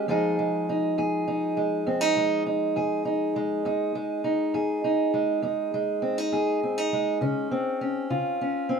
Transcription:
0.08 0.62 F2 medium
0.08 3.62 F3 medium
0.08 0.38 G#3 medium
0.08 0.69 D#4 medium
0.08 0.98 G#4 medium
0.39 1.57 G#3 medium
0.69 1.27 D#4 medium
0.98 1.51 F2 medium
0.98 2.76 G#4 medium
1.28 1.87 D#4 medium
1.57 2.16 G#3 medium
1.86 2.40 F2 medium
1.86 2.01 C4 medium
2.01 2.45 D#4 soft
2.17 3.36 G#3 medium
2.46 3.04 D#4 medium
2.76 3.30 F2 medium
2.76 4.54 G#4 medium
3.05 3.62 D#4 medium
3.36 3.95 G#3 medium
3.65 4.19 F2 medium
3.65 4.23 D#4 medium
3.95 5.13 G#3 medium
4.24 4.83 D#4 medium
4.54 5.08 F2 medium
4.54 6.32 G#4 medium
4.84 5.42 D#4 medium
5.14 5.74 G#3 medium
5.42 5.96 F2 medium
5.42 6.02 D#4 medium
5.74 6.92 G#3 medium
6.02 6.18 C4 medium
6.18 6.62 D#4 soft
6.32 6.86 F2 medium
6.32 8.10 G#4 medium
6.63 6.78 C4 medium
6.78 7.21 D#4 soft
6.93 7.51 G#3 medium
7.21 7.75 C#3 medium
7.21 7.81 C#4 medium
7.51 8.69 C4 medium
7.81 8.41 C#4 medium
8.10 8.64 C#3 medium
8.10 8.80 F4 medium
8.41 8.80 C#4 medium
8.69 8.80 C4 medium

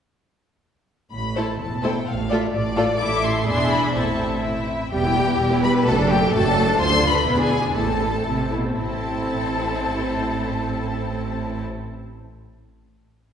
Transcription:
1.12 1.52 A1 soft
1.12 1.52 A2 soft
1.12 1.35 B5 medium
1.36 1.48 A3 soft
1.36 1.48 E4 soft
1.36 1.47 A4 soft
1.36 1.47 C5 soft
1.36 1.59 A5 soft
1.60 1.99 E1 soft
1.60 2.00 E2 soft
1.60 1.83 A5 soft
1.83 1.95 A3 soft
1.83 1.95 E4 soft
1.83 1.94 A4 soft
1.83 1.94 C5 soft
1.83 2.07 G5 medium
2.07 2.46 A1 soft
2.07 2.46 A2 soft
2.07 2.31 F5 medium
2.30 2.41 A3 soft
2.30 2.41 F4 soft
2.30 2.41 A4 soft
2.30 2.41 D5 soft
2.30 2.39 E5 medium
2.53 2.92 A1 medium
2.53 2.92 A2 soft
2.53 2.99 D5 medium
2.76 2.87 A3 medium
2.76 2.87 F4 medium
2.76 2.87 A4 medium
2.76 2.87 D5 medium
3.00 3.43 A1 medium
3.00 3.43 A2 medium
3.00 3.43 A3 soft
3.00 3.43 E4 medium
3.00 3.43 A4 medium
3.00 3.43 E5 soft
3.00 3.24 D6 medium
3.23 3.46 C6 medium
3.46 3.95 E1 medium
3.46 3.94 E2 soft
3.46 3.94 D4 medium
3.46 3.94 E4 medium
3.46 3.94 G#4 medium
3.46 3.93 E5 medium
3.46 3.71 C6 medium
3.71 3.95 B5 medium
3.94 4.71 A1 soft
3.94 4.71 A2 soft
3.94 4.70 C4 soft
3.94 4.70 E4 soft
3.94 4.43 A4 soft
3.94 4.42 E5 soft
3.94 4.43 A5 medium
4.43 4.88 E4 soft
4.43 4.89 E5 medium
4.91 5.34 E1 medium
4.91 5.33 E2 medium
4.91 5.03 G3 medium
4.91 5.61 G4 medium
4.91 5.03 G4 medium
4.91 5.60 G5 medium
5.04 5.16 B3 soft
5.04 5.16 E4 soft
5.16 5.28 G3 medium
5.16 5.28 G4 medium
5.27 5.39 B3 soft
5.27 5.39 E4 soft
5.39 5.80 E1 medium
5.39 5.81 E2 medium
5.39 5.50 G3 medium
5.39 5.50 G4 medium
5.51 5.63 B3 soft
5.51 5.63 E4 medium
5.62 5.75 G3 medium
5.62 5.75 G4 medium
5.62 5.86 B4 medium
5.62 5.71 B5 medium
5.75 5.86 B3 medium
5.75 5.86 E4 soft
5.86 6.28 F#1 medium
5.86 6.28 F#2 medium
5.86 5.97 A3 medium
5.86 5.97 F#4 medium
5.86 6.10 A4 medium
5.86 5.96 A5 medium
5.98 6.09 D4 medium
5.98 6.10 A4 soft
6.10 6.21 A3 medium
6.10 6.21 F#4 medium
6.10 6.33 G4 medium
6.10 6.33 G5 medium
6.21 6.33 D4 soft
6.21 6.33 A4 medium
6.32 6.74 F#1 medium
6.32 6.74 F#2 medium
6.32 6.44 A3 medium
6.32 6.44 F#4 medium
6.32 6.79 A4 medium
6.32 6.78 A5 medium
6.45 6.56 D4 soft
6.45 6.56 A4 medium
6.56 6.67 A3 medium
6.56 6.67 F#4 medium
6.68 6.79 D4 medium
6.68 6.79 A4 soft
6.78 7.20 D2 medium
6.78 7.21 D2 medium
6.78 6.90 A3 medium
6.78 6.90 F4 medium
6.78 7.09 C5 medium
6.78 7.10 C6 loud
6.91 7.03 D4 medium
6.91 7.03 A4 medium
7.02 7.14 A3 soft
7.02 7.14 F4 medium
7.08 7.41 B4 medium
7.08 7.42 B5 medium
7.14 7.26 D4 soft
7.14 7.26 A4 soft
7.26 7.70 E1 medium
7.26 7.70 E2 medium
7.26 7.37 B3 medium
7.26 7.37 E4 medium
7.38 7.50 D4 soft
7.38 7.50 G#4 soft
7.38 7.75 G#4 medium
7.43 7.75 G#5 medium
7.50 7.63 B3 soft
7.50 7.63 E4 soft
7.62 7.75 D4 soft
7.62 7.75 G#4 soft
7.74 8.21 A1 medium
7.74 8.21 A2 soft
7.74 7.87 A3 soft
7.74 7.87 E4 soft
7.74 8.51 A4 medium
7.74 8.51 A5 medium
7.88 8.01 C4 soft
7.88 8.01 A4 soft
8.01 8.14 A3 soft
8.01 8.14 E4 soft
8.14 8.27 C4 soft
8.14 8.27 A4 soft
8.26 8.74 A1 soft
8.26 8.52 C3 soft
8.26 8.39 A3 soft
8.26 8.39 E4 soft
8.40 8.53 C4 soft
8.40 8.53 A4 soft
8.52 8.79 B2 soft
8.52 8.66 A3 soft
8.52 8.66 E4 soft
8.66 8.77 C4 soft
8.66 8.79 A4 soft
8.78 11.62 A1 medium
8.78 11.62 A2 medium
8.78 11.61 C4 soft
8.78 11.61 E4 soft
8.78 11.61 A4 medium
8.78 11.61 A5 medium

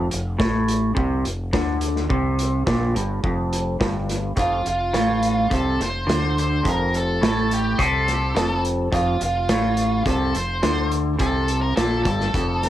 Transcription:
0.11 0.39 F1 medium
0.11 0.34 F2 medium
0.11 closed hi-hat medium
0.38 0.93 A1 medium
0.38 0.94 A2 medium
0.38 kick loud
0.38 snare loud
0.68 closed hi-hat medium
0.95 1.23 C2 medium
0.95 1.23 C3 loud
0.95 kick loud
1.24 1.52 F1 medium
1.24 1.47 F2 medium
1.24 closed hi-hat medium
1.53 2.06 D2 medium
1.53 2.09 D3 medium
1.53 kick medium
1.53 snare loud
1.81 closed hi-hat medium
1.96 snare soft
2.09 2.63 C2 medium
2.09 2.66 C3 loud
2.09 kick loud
2.39 closed hi-hat medium
2.66 2.94 A#1 medium
2.66 2.94 A#2 medium
2.66 kick loud
2.66 snare loud
2.94 3.22 G1 medium
2.94 3.22 G2 medium
2.94 closed hi-hat medium
3.24 3.77 F1 medium
3.24 3.79 F2 loud
3.24 kick loud
3.53 closed hi-hat medium
3.80 4.34 G1 medium
3.80 4.36 G2 medium
3.80 kick loud
3.80 snare loud
4.09 snare soft
4.09 closed hi-hat medium
4.36 4.63 F1 medium
4.36 4.64 F2 loud
4.36 4.65 F4 medium
4.36 kick loud
4.36 closed hi-hat medium
4.65 4.93 F1 medium
4.65 4.88 F2 medium
4.65 5.54 F4 medium
4.65 closed hi-hat medium
4.93 5.47 A1 medium
4.93 5.50 A2 medium
4.93 snare medium
4.93 closed hi-hat medium
5.23 closed hi-hat medium
5.50 5.78 C2 medium
5.50 5.78 C3 medium
5.50 kick medium
5.50 closed hi-hat medium
5.54 5.82 A4 medium
5.79 6.06 F1 medium
5.79 6.02 F2 medium
5.79 6.38 C5 loud
5.79 snare soft
5.79 closed hi-hat medium
6.07 6.61 D2 medium
6.07 6.63 D3 medium
6.07 snare loud
6.07 closed hi-hat medium
6.38 6.65 C5 medium
6.38 closed hi-hat medium
6.63 7.18 F1 medium
6.63 7.20 F2 loud
6.63 kick loud
6.63 closed hi-hat medium
6.69 6.96 A#4 loud
6.94 7.23 A4 medium
6.94 closed hi-hat medium
7.21 7.75 A1 medium
7.21 7.79 A2 medium
7.21 7.52 A4 medium
7.21 snare loud
7.21 closed hi-hat medium
7.51 7.81 G4 medium
7.51 closed hi-hat medium
7.79 8.32 C2 medium
7.79 8.35 C3 medium
7.79 8.62 A4 medium
7.79 kick medium
7.79 closed hi-hat medium
8.08 snare soft
8.08 closed hi-hat medium
8.35 8.88 F1 medium
8.35 8.90 F2 loud
8.35 snare medium
8.35 closed hi-hat medium
8.65 closed hi-hat medium
8.92 9.19 F1 medium
8.92 9.19 F2 loud
8.92 9.22 F4 medium
8.92 kick medium
8.92 closed hi-hat medium
9.20 9.47 F1 medium
9.20 9.43 F2 medium
9.20 10.03 F4 medium
9.20 closed hi-hat medium
9.49 10.02 A1 medium
9.49 10.05 A2 loud
9.49 snare loud
9.49 closed hi-hat medium
9.77 closed hi-hat medium
10.06 10.33 C2 medium
10.06 10.34 C3 medium
10.06 10.36 A4 medium
10.06 kick medium
10.06 closed hi-hat medium
10.35 10.62 F1 medium
10.35 10.58 F2 medium
10.35 10.89 C5 loud
10.35 closed hi-hat medium
10.63 11.16 D2 medium
10.63 11.18 D3 medium
10.63 snare loud
10.63 closed hi-hat medium
10.91 closed hi-hat medium
11.19 11.73 C2 medium
11.19 11.76 C3 loud
11.19 11.60 A4 loud
11.19 kick loud
11.19 closed hi-hat medium
11.48 closed hi-hat medium
11.62 11.76 A#4 medium
11.76 12.04 A#1 medium
11.76 12.05 A#2 medium
11.76 12.02 A4 loud
11.76 snare loud
11.76 closed hi-hat medium
12.04 12.32 G1 medium
12.04 12.33 G2 medium
12.04 12.69 A4 medium
12.04 kick loud
12.04 closed hi-hat medium
12.21 snare soft
12.34 12.69 F1 medium
12.34 12.69 F2 medium
12.34 kick loud
12.34 closed hi-hat medium
12.63 snare soft
12.63 closed hi-hat medium

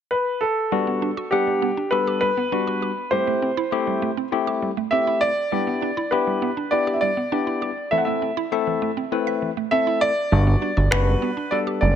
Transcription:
0.11 0.42 B4 medium
0.41 1.34 A4 medium
0.72 1.10 G3 medium
0.72 0.80 G3 medium
0.72 1.10 B3 medium
0.72 1.10 D4 medium
0.72 1.10 F#4 medium
0.87 0.95 B3 medium
1.02 1.10 D4 medium
1.17 1.26 F#4 loud
1.31 1.70 G3 medium
1.31 1.70 B3 medium
1.31 1.70 D4 medium
1.31 1.93 G4 medium
1.31 1.41 G4 medium
1.31 1.70 F#5 medium
1.47 1.56 G3 medium
1.62 1.71 B3 medium
1.77 1.86 D4 medium
1.91 2.30 G3 medium
1.91 2.30 B3 medium
1.91 2.30 D4 medium
1.91 2.01 F#4 medium
1.91 2.30 A4 medium
1.91 2.19 B4 medium
2.07 2.16 G4 medium
2.21 2.31 G3 medium
2.21 3.14 B4 loud
2.37 2.46 B3 medium
2.52 2.90 G3 medium
2.52 2.90 B3 medium
2.52 2.61 D4 medium
2.52 2.90 D4 medium
2.52 2.90 F#4 medium
2.67 2.76 F#4 medium
2.82 2.91 G4 medium
3.11 3.21 G3 medium
3.11 3.50 A3 medium
3.11 3.50 C4 medium
3.11 3.50 E4 medium
3.11 3.50 G4 medium
3.11 4.28 C5 loud
3.27 3.36 A3 medium
3.42 3.51 C4 medium
3.57 3.66 E4 loud
3.72 4.10 A3 medium
3.72 4.10 C4 medium
3.72 4.10 E4 medium
3.72 3.81 G4 medium
3.72 4.10 G4 medium
3.87 3.96 G3 medium
4.02 4.11 A3 medium
4.17 4.26 C4 medium
4.32 4.70 A3 medium
4.32 4.70 C4 medium
4.32 4.70 E4 medium
4.32 4.41 E4 medium
4.32 4.70 G4 medium
4.47 4.56 G4 loud
4.62 4.71 G3 medium
4.77 4.85 A3 medium
4.91 5.30 A3 medium
4.91 5.30 C4 medium
4.91 5.01 C4 medium
4.91 5.30 E4 medium
4.91 5.30 G4 medium
4.91 5.22 E5 loud
5.07 5.16 E4 medium
5.21 5.31 G4 medium
5.21 6.14 D5 loud
5.52 5.60 G3 medium
5.52 5.90 B3 medium
5.52 5.90 D4 medium
5.52 5.90 E4 medium
5.52 5.90 G4 medium
5.67 5.75 B3 medium
5.82 5.91 D4 medium
5.97 6.05 E4 loud
6.11 6.50 B3 medium
6.11 6.50 D4 medium
6.11 6.50 E4 medium
6.11 6.20 G4 medium
6.11 6.50 G4 medium
6.11 6.73 B4 medium
6.27 6.35 G3 medium
6.42 6.50 B3 medium
6.57 6.65 D4 medium
6.71 7.10 B3 medium
6.71 7.10 D4 medium
6.71 6.80 E4 medium
6.71 7.10 E4 medium
6.71 7.10 G4 medium
6.71 6.95 D5 medium
6.87 6.95 G4 loud
6.94 7.01 E5 medium
7.01 7.10 G3 medium
7.01 7.88 D5 loud
7.17 7.25 B3 medium
7.32 7.70 B3 medium
7.32 7.70 D4 medium
7.32 7.40 D4 medium
7.32 7.70 E4 medium
7.32 7.70 G4 medium
7.47 7.55 E4 medium
7.62 7.70 G4 medium
7.91 8.00 E3 medium
7.91 8.30 A3 medium
7.91 8.30 C4 medium
7.91 8.30 E4 medium
7.91 8.30 A4 medium
7.91 7.98 E5 medium
7.98 8.05 F#5 medium
8.05 8.15 A3 medium
8.05 9.08 E5 medium
8.22 8.30 C4 medium
8.37 8.45 E4 loud
8.52 8.90 A3 medium
8.52 8.90 C4 medium
8.52 8.90 E4 medium
8.52 8.90 A4 medium
8.52 8.60 E5 medium
8.67 8.75 E3 medium
8.82 8.90 A3 medium
8.97 9.05 C4 medium
9.12 9.50 A3 medium
9.12 9.50 C4 medium
9.12 9.20 E4 medium
9.12 9.50 E4 medium
9.12 9.50 B4 medium
9.27 9.35 E5 medium
9.42 9.50 E3 medium
9.57 9.65 A3 medium
9.71 10.10 A3 medium
9.71 10.10 C4 medium
9.71 9.80 C4 medium
9.71 10.10 E4 medium
9.71 10.10 A4 medium
9.71 10.00 E5 loud
9.87 9.95 E4 medium
10.01 10.94 D5 loud
10.01 10.10 E5 medium
10.32 10.56 G1 loud
10.32 10.70 G3 medium
10.32 10.40 G3 medium
10.32 10.70 B3 medium
10.32 10.70 D4 medium
10.32 10.70 F#4 medium
10.47 10.55 B3 medium
10.62 10.70 D4 medium
10.77 10.89 G1 medium
10.77 10.85 F#4 loud
10.91 11.16 F#1 loud
10.91 11.30 G3 medium
10.91 11.30 B3 medium
10.91 11.30 D4 medium
10.91 11.30 F#4 medium
10.91 11.00 G4 medium
10.91 11.53 B4 loud
10.91 finger snap loud
11.07 11.15 G3 medium
11.22 11.30 B3 medium
11.37 11.45 D4 medium
11.51 11.90 G3 medium
11.51 11.90 B3 medium
11.51 11.90 D4 medium
11.51 11.60 F#4 medium
11.51 11.90 A4 medium
11.51 11.58 D5 loud
11.67 11.75 G4 loud
11.81 11.96 F#1 medium
11.81 11.90 G3 medium
11.81 11.96 D5 medium

